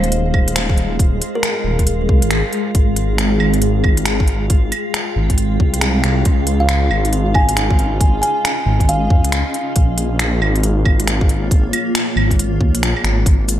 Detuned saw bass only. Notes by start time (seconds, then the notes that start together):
Already playing: D#1
1.64 D#1
2.09 C2
2.23 G#1
2.75 G#1
3.41 G#1
5.16 G#1
5.60 C2
6.04 C2
6.26 C#2
6.91 G#1
8.66 G#1
9.10 F2
9.23 C#2
9.76 A#1
10.41 G#1
12.16 G#1
12.61 D#2
12.74 A#1
13.04 G#1
13.26 G#1